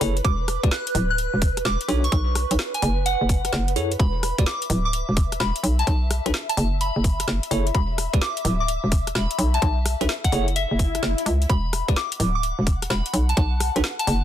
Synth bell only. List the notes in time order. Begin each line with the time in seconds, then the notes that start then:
Already playing: B5
0.24 D6
0.71 F#6
1.10 F#6
1.65 D6
2.04 C#6
2.74 G#5
3.06 F#5
4.00 B5
4.46 D6
4.85 D6
5.40 B5
5.79 A5
6.49 A5
6.81 B5
7.74 B5
8.21 D6
8.60 D6
9.15 B5
9.54 A5
10.24 F#5
10.56 E5
11.50 B5
11.96 D6
12.35 D6
12.90 B5
13.29 A5
13.99 A5